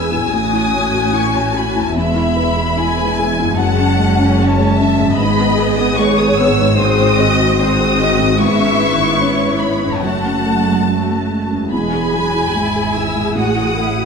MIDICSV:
0, 0, Header, 1, 8, 480
1, 0, Start_track
1, 0, Key_signature, 4, "major"
1, 0, Tempo, 814111
1, 1153, Time_signature, 4, 2, 24, 8
1, 2108, Tempo, 803213
1, 5468, Tempo, 839161
1, 6908, Tempo, 817439
1, 8280, End_track
2, 0, Start_track
2, 0, Title_t, "Violin section"
2, 0, Program_c, 0, 48
2, 0, Note_on_c, 0, 88, 75
2, 187, Note_off_c, 0, 88, 0
2, 190, Note_on_c, 0, 87, 86
2, 676, Note_off_c, 0, 87, 0
2, 681, Note_on_c, 0, 85, 79
2, 799, Note_off_c, 0, 85, 0
2, 800, Note_on_c, 0, 81, 68
2, 917, Note_off_c, 0, 81, 0
2, 920, Note_on_c, 0, 83, 72
2, 1036, Note_off_c, 0, 83, 0
2, 1050, Note_on_c, 0, 81, 66
2, 1161, Note_off_c, 0, 81, 0
2, 1164, Note_on_c, 0, 83, 85
2, 1864, Note_on_c, 0, 80, 82
2, 1875, Note_off_c, 0, 83, 0
2, 2106, Note_off_c, 0, 80, 0
2, 2110, Note_on_c, 0, 81, 88
2, 2572, Note_off_c, 0, 81, 0
2, 2580, Note_on_c, 0, 81, 92
2, 3049, Note_off_c, 0, 81, 0
2, 3051, Note_on_c, 0, 83, 97
2, 3410, Note_off_c, 0, 83, 0
2, 3422, Note_on_c, 0, 87, 92
2, 3540, Note_on_c, 0, 85, 102
2, 3541, Note_off_c, 0, 87, 0
2, 3661, Note_on_c, 0, 87, 94
2, 3662, Note_off_c, 0, 85, 0
2, 3782, Note_off_c, 0, 87, 0
2, 3784, Note_on_c, 0, 88, 99
2, 4023, Note_off_c, 0, 88, 0
2, 4025, Note_on_c, 0, 87, 99
2, 4500, Note_off_c, 0, 87, 0
2, 4507, Note_on_c, 0, 87, 103
2, 4977, Note_off_c, 0, 87, 0
2, 4985, Note_on_c, 0, 85, 104
2, 5694, Note_on_c, 0, 83, 79
2, 5707, Note_off_c, 0, 85, 0
2, 5938, Note_on_c, 0, 78, 75
2, 5942, Note_off_c, 0, 83, 0
2, 6426, Note_on_c, 0, 81, 68
2, 6427, Note_off_c, 0, 78, 0
2, 6906, Note_off_c, 0, 81, 0
2, 6913, Note_on_c, 0, 83, 81
2, 7624, Note_off_c, 0, 83, 0
2, 7635, Note_on_c, 0, 88, 79
2, 7874, Note_off_c, 0, 88, 0
2, 7877, Note_on_c, 0, 87, 82
2, 8280, Note_off_c, 0, 87, 0
2, 8280, End_track
3, 0, Start_track
3, 0, Title_t, "Violin section"
3, 0, Program_c, 1, 48
3, 0, Note_on_c, 1, 80, 68
3, 1131, Note_off_c, 1, 80, 0
3, 1165, Note_on_c, 1, 76, 61
3, 1636, Note_off_c, 1, 76, 0
3, 1639, Note_on_c, 1, 80, 66
3, 2110, Note_on_c, 1, 78, 70
3, 2113, Note_off_c, 1, 80, 0
3, 2580, Note_off_c, 1, 78, 0
3, 2596, Note_on_c, 1, 73, 68
3, 2822, Note_on_c, 1, 76, 68
3, 2831, Note_off_c, 1, 73, 0
3, 3056, Note_off_c, 1, 76, 0
3, 3062, Note_on_c, 1, 75, 67
3, 3543, Note_off_c, 1, 75, 0
3, 3551, Note_on_c, 1, 73, 81
3, 4026, Note_off_c, 1, 73, 0
3, 4030, Note_on_c, 1, 72, 74
3, 4266, Note_off_c, 1, 72, 0
3, 4266, Note_on_c, 1, 75, 79
3, 4504, Note_on_c, 1, 72, 72
3, 4505, Note_off_c, 1, 75, 0
3, 4744, Note_off_c, 1, 72, 0
3, 4749, Note_on_c, 1, 75, 68
3, 4987, Note_off_c, 1, 75, 0
3, 5000, Note_on_c, 1, 76, 75
3, 5468, Note_on_c, 1, 73, 66
3, 5477, Note_off_c, 1, 76, 0
3, 5938, Note_off_c, 1, 73, 0
3, 5947, Note_on_c, 1, 81, 59
3, 6670, Note_off_c, 1, 81, 0
3, 6909, Note_on_c, 1, 80, 69
3, 7851, Note_off_c, 1, 80, 0
3, 7874, Note_on_c, 1, 78, 58
3, 8280, Note_off_c, 1, 78, 0
3, 8280, End_track
4, 0, Start_track
4, 0, Title_t, "Felt piano"
4, 0, Program_c, 2, 0
4, 0, Control_c, 2, 64, 127
4, 0, Note_on_c, 2, 40, 53
4, 0, Note_on_c, 2, 64, 42
4, 0, Note_on_c, 2, 68, 45
4, 0, Note_on_c, 2, 71, 43
4, 67, Note_off_c, 2, 64, 0
4, 67, Note_on_c, 2, 64, 39
4, 143, Note_off_c, 2, 68, 0
4, 172, Note_off_c, 2, 40, 0
4, 190, Note_off_c, 2, 64, 0
4, 195, Note_on_c, 2, 45, 51
4, 201, Control_c, 2, 64, 0
4, 205, Note_off_c, 2, 71, 0
4, 312, Control_c, 2, 64, 127
4, 313, Note_on_c, 2, 64, 39
4, 435, Note_on_c, 2, 73, 40
4, 507, Note_off_c, 2, 64, 0
4, 553, Note_on_c, 2, 66, 47
4, 628, Note_off_c, 2, 73, 0
4, 667, Note_on_c, 2, 64, 44
4, 747, Note_off_c, 2, 66, 0
4, 789, Note_on_c, 2, 73, 47
4, 863, Note_off_c, 2, 64, 0
4, 912, Note_on_c, 2, 66, 45
4, 983, Note_off_c, 2, 73, 0
4, 1036, Note_on_c, 2, 64, 40
4, 1104, Note_off_c, 2, 66, 0
4, 1131, Note_off_c, 2, 45, 0
4, 1154, Note_off_c, 2, 64, 0
4, 1158, Note_on_c, 2, 40, 54
4, 1163, Control_c, 2, 64, 0
4, 1245, Control_c, 2, 64, 127
4, 1273, Note_on_c, 2, 64, 44
4, 1394, Note_on_c, 2, 71, 45
4, 1463, Note_off_c, 2, 64, 0
4, 1510, Note_on_c, 2, 68, 45
4, 1583, Note_off_c, 2, 71, 0
4, 1634, Note_on_c, 2, 64, 47
4, 1701, Note_off_c, 2, 68, 0
4, 1758, Note_on_c, 2, 71, 47
4, 1824, Note_off_c, 2, 64, 0
4, 1881, Note_on_c, 2, 68, 51
4, 1946, Note_off_c, 2, 71, 0
4, 2003, Note_on_c, 2, 64, 46
4, 2067, Note_off_c, 2, 68, 0
4, 2087, Note_off_c, 2, 40, 0
4, 2115, Note_off_c, 2, 64, 0
4, 2118, Control_c, 2, 64, 0
4, 2119, Note_on_c, 2, 42, 58
4, 2204, Control_c, 2, 64, 127
4, 2236, Note_on_c, 2, 61, 47
4, 2351, Note_on_c, 2, 56, 52
4, 2424, Note_off_c, 2, 61, 0
4, 2475, Note_on_c, 2, 61, 54
4, 2542, Note_off_c, 2, 56, 0
4, 2598, Note_on_c, 2, 56, 55
4, 2664, Note_off_c, 2, 61, 0
4, 2712, Note_off_c, 2, 56, 0
4, 2721, Note_on_c, 2, 56, 57
4, 2833, Note_on_c, 2, 61, 58
4, 2904, Note_off_c, 2, 56, 0
4, 2957, Note_on_c, 2, 56, 52
4, 3019, Note_off_c, 2, 61, 0
4, 3045, Note_off_c, 2, 42, 0
4, 3070, Note_off_c, 2, 56, 0
4, 3074, Note_on_c, 2, 44, 70
4, 3075, Control_c, 2, 64, 0
4, 3170, Control_c, 2, 64, 127
4, 3194, Note_on_c, 2, 59, 54
4, 3308, Note_on_c, 2, 68, 56
4, 3381, Note_off_c, 2, 59, 0
4, 3438, Note_on_c, 2, 59, 56
4, 3498, Note_off_c, 2, 68, 0
4, 3549, Note_on_c, 2, 56, 55
4, 3623, Note_off_c, 2, 59, 0
4, 3672, Note_on_c, 2, 68, 55
4, 3738, Note_off_c, 2, 56, 0
4, 3796, Note_on_c, 2, 59, 57
4, 3860, Note_off_c, 2, 68, 0
4, 3915, Note_on_c, 2, 56, 55
4, 3981, Note_off_c, 2, 59, 0
4, 4004, Note_off_c, 2, 44, 0
4, 4029, Note_off_c, 2, 56, 0
4, 4029, Note_on_c, 2, 44, 66
4, 4035, Control_c, 2, 64, 0
4, 4124, Control_c, 2, 64, 127
4, 4154, Note_on_c, 2, 60, 51
4, 4271, Note_on_c, 2, 68, 55
4, 4341, Note_off_c, 2, 60, 0
4, 4387, Note_on_c, 2, 66, 54
4, 4459, Note_off_c, 2, 68, 0
4, 4507, Note_on_c, 2, 60, 55
4, 4578, Note_off_c, 2, 66, 0
4, 4632, Note_on_c, 2, 68, 53
4, 4698, Note_off_c, 2, 60, 0
4, 4750, Note_on_c, 2, 66, 55
4, 4820, Note_off_c, 2, 68, 0
4, 4863, Note_on_c, 2, 60, 47
4, 4939, Note_off_c, 2, 66, 0
4, 4963, Note_off_c, 2, 44, 0
4, 4984, Note_off_c, 2, 60, 0
4, 4987, Note_on_c, 2, 44, 63
4, 4994, Control_c, 2, 64, 0
4, 5104, Note_on_c, 2, 61, 48
4, 5106, Control_c, 2, 64, 127
4, 5227, Note_on_c, 2, 71, 56
4, 5299, Note_off_c, 2, 61, 0
4, 5354, Note_on_c, 2, 64, 47
4, 5421, Note_off_c, 2, 71, 0
4, 5475, Note_on_c, 2, 61, 49
4, 5543, Note_off_c, 2, 64, 0
4, 5595, Note_on_c, 2, 71, 45
4, 5661, Note_off_c, 2, 61, 0
4, 5708, Note_on_c, 2, 64, 44
4, 5782, Note_off_c, 2, 71, 0
4, 5830, Note_on_c, 2, 61, 39
4, 5900, Note_off_c, 2, 64, 0
4, 5926, Note_off_c, 2, 44, 0
4, 5944, Note_on_c, 2, 42, 47
4, 5950, Note_off_c, 2, 61, 0
4, 5958, Control_c, 2, 64, 0
4, 6046, Control_c, 2, 64, 127
4, 6072, Note_on_c, 2, 61, 37
4, 6190, Note_on_c, 2, 57, 38
4, 6265, Note_off_c, 2, 61, 0
4, 6310, Note_on_c, 2, 56, 39
4, 6383, Note_off_c, 2, 57, 0
4, 6433, Note_on_c, 2, 61, 41
4, 6502, Note_off_c, 2, 56, 0
4, 6551, Note_on_c, 2, 57, 39
4, 6623, Note_off_c, 2, 61, 0
4, 6668, Note_on_c, 2, 56, 39
4, 6743, Note_off_c, 2, 57, 0
4, 6788, Note_on_c, 2, 61, 34
4, 6860, Note_off_c, 2, 56, 0
4, 6884, Note_off_c, 2, 42, 0
4, 6908, Note_off_c, 2, 61, 0
4, 6913, Note_on_c, 2, 40, 50
4, 6921, Control_c, 2, 64, 0
4, 7002, Control_c, 2, 64, 127
4, 7037, Note_on_c, 2, 64, 41
4, 7156, Note_on_c, 2, 68, 44
4, 7229, Note_off_c, 2, 64, 0
4, 7275, Note_on_c, 2, 64, 42
4, 7349, Note_off_c, 2, 68, 0
4, 7397, Note_on_c, 2, 56, 41
4, 7468, Note_off_c, 2, 64, 0
4, 7521, Note_on_c, 2, 68, 43
4, 7590, Note_off_c, 2, 56, 0
4, 7643, Note_on_c, 2, 64, 41
4, 7711, Note_off_c, 2, 68, 0
4, 7752, Note_on_c, 2, 56, 38
4, 7831, Note_off_c, 2, 64, 0
4, 7853, Note_off_c, 2, 40, 0
4, 7870, Note_on_c, 2, 45, 51
4, 7873, Note_off_c, 2, 56, 0
4, 7886, Control_c, 2, 64, 0
4, 7971, Control_c, 2, 64, 127
4, 7991, Note_on_c, 2, 64, 37
4, 8115, Note_on_c, 2, 69, 42
4, 8181, Note_off_c, 2, 64, 0
4, 8231, Note_on_c, 2, 66, 43
4, 8280, Note_off_c, 2, 45, 0
4, 8280, Note_off_c, 2, 66, 0
4, 8280, Note_off_c, 2, 69, 0
4, 8280, End_track
5, 0, Start_track
5, 0, Title_t, "Viola section"
5, 0, Program_c, 3, 48
5, 0, Note_on_c, 3, 59, 48
5, 0, Note_on_c, 3, 68, 48
5, 160, Note_off_c, 3, 59, 0
5, 160, Note_off_c, 3, 68, 0
5, 191, Note_on_c, 3, 66, 54
5, 192, Note_on_c, 3, 61, 52
5, 1153, Note_off_c, 3, 66, 0
5, 1154, Note_off_c, 3, 61, 0
5, 1158, Note_on_c, 3, 56, 55
5, 1158, Note_on_c, 3, 64, 52
5, 2092, Note_off_c, 3, 64, 0
5, 2116, Note_on_c, 3, 61, 60
5, 3042, Note_off_c, 3, 56, 0
5, 3057, Note_on_c, 3, 59, 67
5, 3062, Note_on_c, 3, 68, 72
5, 3067, Note_off_c, 3, 61, 0
5, 3995, Note_off_c, 3, 59, 0
5, 3998, Note_off_c, 3, 68, 0
5, 4022, Note_on_c, 3, 60, 73
5, 4025, Note_on_c, 3, 66, 66
5, 4495, Note_off_c, 3, 66, 0
5, 4503, Note_off_c, 3, 60, 0
5, 4512, Note_on_c, 3, 60, 73
5, 4515, Note_on_c, 3, 66, 68
5, 4979, Note_off_c, 3, 60, 0
5, 4980, Note_off_c, 3, 66, 0
5, 4994, Note_on_c, 3, 64, 62
5, 4996, Note_on_c, 3, 59, 68
5, 5950, Note_on_c, 3, 66, 53
5, 5952, Note_on_c, 3, 57, 53
5, 5953, Note_off_c, 3, 59, 0
5, 5953, Note_off_c, 3, 64, 0
5, 6430, Note_off_c, 3, 57, 0
5, 6430, Note_off_c, 3, 66, 0
5, 6437, Note_on_c, 3, 57, 47
5, 6437, Note_on_c, 3, 66, 49
5, 6789, Note_off_c, 3, 57, 0
5, 6789, Note_off_c, 3, 66, 0
5, 6912, Note_on_c, 3, 68, 46
5, 6914, Note_on_c, 3, 56, 48
5, 7138, Note_off_c, 3, 56, 0
5, 7160, Note_on_c, 3, 54, 52
5, 7373, Note_off_c, 3, 68, 0
5, 7399, Note_off_c, 3, 54, 0
5, 7401, Note_on_c, 3, 64, 52
5, 7402, Note_on_c, 3, 68, 52
5, 7878, Note_off_c, 3, 64, 0
5, 7885, Note_on_c, 3, 66, 54
5, 8116, Note_off_c, 3, 66, 0
5, 8125, Note_on_c, 3, 64, 53
5, 8280, Note_off_c, 3, 64, 0
5, 8280, Note_off_c, 3, 68, 0
5, 8280, End_track
6, 0, Start_track
6, 0, Title_t, "Harp"
6, 0, Program_c, 4, 46
6, 0, Note_on_c, 4, 40, 51
6, 0, Note_on_c, 4, 54, 29
6, 0, Note_on_c, 4, 59, 41
6, 0, Note_on_c, 4, 64, 42
6, 0, Note_on_c, 4, 68, 42
6, 90, Note_on_c, 4, 45, 49
6, 116, Note_on_c, 4, 61, 41
6, 134, Note_off_c, 4, 64, 0
6, 141, Note_on_c, 4, 64, 41
6, 157, Note_off_c, 4, 40, 0
6, 168, Note_on_c, 4, 66, 40
6, 171, Note_off_c, 4, 54, 0
6, 171, Note_off_c, 4, 59, 0
6, 198, Note_off_c, 4, 68, 0
6, 1055, Note_on_c, 4, 40, 51
6, 1080, Note_on_c, 4, 59, 43
6, 1100, Note_off_c, 4, 64, 0
6, 1107, Note_on_c, 4, 64, 44
6, 1122, Note_off_c, 4, 45, 0
6, 1134, Note_off_c, 4, 61, 0
6, 1160, Note_off_c, 4, 66, 0
6, 2003, Note_on_c, 4, 42, 58
6, 2031, Note_on_c, 4, 56, 49
6, 2056, Note_on_c, 4, 61, 48
6, 2079, Note_off_c, 4, 40, 0
6, 2091, Note_off_c, 4, 59, 0
6, 2104, Note_off_c, 4, 64, 0
6, 2957, Note_on_c, 4, 44, 66
6, 2977, Note_off_c, 4, 56, 0
6, 2984, Note_on_c, 4, 56, 53
6, 3012, Note_on_c, 4, 59, 55
6, 3029, Note_off_c, 4, 42, 0
6, 3056, Note_off_c, 4, 61, 0
6, 3913, Note_off_c, 4, 44, 0
6, 3920, Note_on_c, 4, 44, 63
6, 3939, Note_off_c, 4, 56, 0
6, 3946, Note_on_c, 4, 56, 54
6, 3974, Note_on_c, 4, 60, 55
6, 4002, Note_on_c, 4, 66, 51
6, 4016, Note_off_c, 4, 59, 0
6, 4870, Note_off_c, 4, 44, 0
6, 4877, Note_on_c, 4, 44, 64
6, 4907, Note_on_c, 4, 59, 54
6, 4934, Note_on_c, 4, 61, 51
6, 4958, Note_on_c, 4, 64, 51
6, 4979, Note_off_c, 4, 60, 0
6, 4993, Note_off_c, 4, 66, 0
6, 5843, Note_on_c, 4, 42, 46
6, 5869, Note_on_c, 4, 57, 40
6, 5889, Note_off_c, 4, 61, 0
6, 5896, Note_on_c, 4, 61, 41
6, 5916, Note_off_c, 4, 44, 0
6, 5921, Note_on_c, 4, 66, 40
6, 5931, Note_off_c, 4, 59, 0
6, 5955, Note_off_c, 4, 64, 0
6, 6242, Note_off_c, 4, 56, 0
6, 6805, Note_on_c, 4, 40, 49
6, 6830, Note_on_c, 4, 56, 41
6, 6858, Note_on_c, 4, 64, 41
6, 6875, Note_off_c, 4, 42, 0
6, 6885, Note_on_c, 4, 68, 40
6, 6888, Note_off_c, 4, 57, 0
6, 6902, Note_off_c, 4, 61, 0
6, 7774, Note_on_c, 4, 45, 51
6, 7800, Note_on_c, 4, 57, 39
6, 7821, Note_off_c, 4, 64, 0
6, 7828, Note_on_c, 4, 64, 37
6, 7841, Note_off_c, 4, 40, 0
6, 7846, Note_off_c, 4, 66, 0
6, 7853, Note_off_c, 4, 56, 0
6, 7853, Note_on_c, 4, 66, 41
6, 7882, Note_off_c, 4, 68, 0
6, 8280, Note_off_c, 4, 45, 0
6, 8280, Note_off_c, 4, 57, 0
6, 8280, Note_off_c, 4, 64, 0
6, 8280, Note_off_c, 4, 66, 0
6, 8280, End_track
7, 0, Start_track
7, 0, Title_t, "Cello section"
7, 0, Program_c, 5, 48
7, 0, Note_on_c, 5, 40, 52
7, 166, Note_off_c, 5, 40, 0
7, 190, Note_on_c, 5, 45, 59
7, 1133, Note_off_c, 5, 45, 0
7, 1151, Note_on_c, 5, 40, 59
7, 2088, Note_off_c, 5, 40, 0
7, 2121, Note_on_c, 5, 42, 62
7, 3065, Note_on_c, 5, 44, 70
7, 3070, Note_off_c, 5, 42, 0
7, 5926, Note_off_c, 5, 44, 0
7, 5957, Note_on_c, 5, 42, 57
7, 6798, Note_off_c, 5, 42, 0
7, 6914, Note_on_c, 5, 40, 54
7, 7374, Note_off_c, 5, 40, 0
7, 7397, Note_on_c, 5, 44, 51
7, 7874, Note_on_c, 5, 45, 51
7, 7876, Note_off_c, 5, 44, 0
7, 8280, Note_off_c, 5, 45, 0
7, 8280, End_track
8, 0, Start_track
8, 0, Title_t, "Double bass section"
8, 0, Program_c, 6, 48
8, 0, Note_on_c, 6, 28, 59
8, 169, Note_off_c, 6, 28, 0
8, 192, Note_on_c, 6, 33, 55
8, 1134, Note_off_c, 6, 33, 0
8, 1154, Note_on_c, 6, 28, 61
8, 2090, Note_off_c, 6, 28, 0
8, 2116, Note_on_c, 6, 30, 69
8, 3067, Note_off_c, 6, 30, 0
8, 3070, Note_on_c, 6, 32, 77
8, 5928, Note_off_c, 6, 32, 0
8, 5952, Note_on_c, 6, 30, 60
8, 6796, Note_off_c, 6, 30, 0
8, 6914, Note_on_c, 6, 28, 55
8, 7374, Note_off_c, 6, 28, 0
8, 7396, Note_on_c, 6, 32, 51
8, 7873, Note_on_c, 6, 33, 54
8, 7875, Note_off_c, 6, 32, 0
8, 8280, Note_off_c, 6, 33, 0
8, 8280, End_track
0, 0, End_of_file